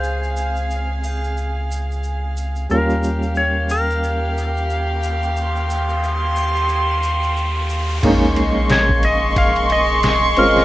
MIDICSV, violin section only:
0, 0, Header, 1, 2, 480
1, 0, Start_track
1, 0, Tempo, 666667
1, 23, Time_signature, 4, 2, 24, 8
1, 7667, End_track
2, 0, Start_track
2, 0, Title_t, "Violin section"
2, 0, Program_c, 0, 48
2, 0, Note_on_c, 0, 68, 68
2, 0, Note_on_c, 0, 77, 63
2, 1912, Note_off_c, 0, 68, 0
2, 1913, Note_off_c, 0, 77, 0
2, 1946, Note_on_c, 0, 77, 70
2, 1947, Note_on_c, 0, 67, 72
2, 3869, Note_on_c, 0, 84, 80
2, 5756, Note_off_c, 0, 67, 0
2, 5756, Note_off_c, 0, 77, 0
2, 5767, Note_off_c, 0, 84, 0
2, 5785, Note_on_c, 0, 56, 83
2, 5785, Note_on_c, 0, 75, 70
2, 5785, Note_on_c, 0, 85, 93
2, 5787, Note_on_c, 0, 84, 74
2, 7667, Note_off_c, 0, 56, 0
2, 7667, Note_off_c, 0, 75, 0
2, 7667, Note_off_c, 0, 84, 0
2, 7667, Note_off_c, 0, 85, 0
2, 7667, End_track
0, 0, End_of_file